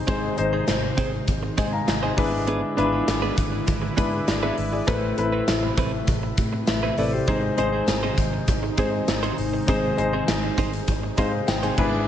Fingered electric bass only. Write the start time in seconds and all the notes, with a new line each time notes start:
0.08 G#1
0.39 G#1
0.68 G#1
0.98 G#1
1.28 G#1
1.58 G#2
1.88 G#1
2.18 G#1
2.78 G#1
3.08 G#1
3.38 G#1
3.68 G#1
3.98 G#2
4.28 G#1
4.58 G#1
4.88 A1
5.18 A1
5.48 A1
5.78 A1
6.08 A1
6.38 A2
6.68 A1
6.98 A1
7.28 G#1
7.58 G#1
7.88 G#1
8.18 G#1
8.48 G#1
8.78 G#2
9.08 G#1
9.38 G#1
9.68 G#1
9.98 G#1
10.28 G#1
10.58 G#1
10.88 G#1
11.18 G#2
11.48 G#1
11.78 G#1